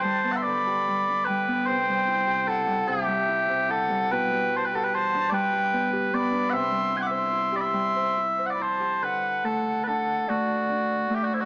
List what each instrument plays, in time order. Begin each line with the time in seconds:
Already playing: harp G2 D3 D4 E4 G4
0.01 harp G3, bagpipes C5, flute A5
0.24 harp B3
0.32 bagpipes E5 F#5
0.37 flute C6
0.43 harp D3, bagpipes D5, flute B5
0.67 harp G4
0.88 harp G3
1.09 harp D4
1.25 bagpipes B4, flute G5
1.29 harp G3
1.48 harp B3
1.66 harp C3, bagpipes C5, flute G5
1.88 harp G3
2.07 harp E4
2.27 harp C3
2.47 harp E4, bagpipes A4, flute F#5
2.67 harp G3
2.87 harp C3, bagpipes G4, flute E5
3.07 harp G3
3.28 harp E4
3.49 harp C3
3.68 harp E4, bagpipes A4, flute F#5
3.89 harp G3
4.11 harp B2, bagpipes B4, flute G5
4.31 harp G3
4.56 bagpipes C5, flute A5
4.65 bagpipes B4, flute G5
4.73 harp G4, bagpipes A4, flute F#5
4.83 bagpipes B4, flute G5
4.94 bagpipes C5, flute A5
5.14 harp D4
5.30 harp G3, bagpipes D5
5.34 bagpipes B4, flute G5
5.53 harp G4
5.73 harp B3
5.93 harp G4
6.13 harp B3, bagpipes D5
6.17 flute B5
6.31 harp D4
6.50 harp C3, bagpipes E5 F#5
6.56 flute C6
6.71 harp G3
6.90 harp E4
6.97 bagpipes F#5 G#5
7.03 flute D6
7.07 harp C5, bagpipes E5
7.12 flute C6
7.32 harp E4
7.52 harp G4
7.56 bagpipes D5, flute B5
7.61 bagpipes E5
7.66 flute C6
7.73 harp G3
7.96 harp C5
8.17 harp E4
8.39 harp C5
8.46 bagpipes F#5
8.50 bagpipes D5, flute B5
8.59 harp E4, bagpipes C5, flute A5
8.80 harp G4
9.02 harp D3, bagpipes B4, flute F#5
9.44 harp A3, bagpipes A4, flute F#5
9.84 harp D4, bagpipes A4 B4, flute F#5
10.28 harp A3, bagpipes F#4, flute D5
10.69 harp D4
11.10 harp A3
11.14 bagpipes G4, flute E5
11.23 bagpipes F#4, flute D5
11.34 bagpipes E4, flute C5
11.40 bagpipes F#4, flute D5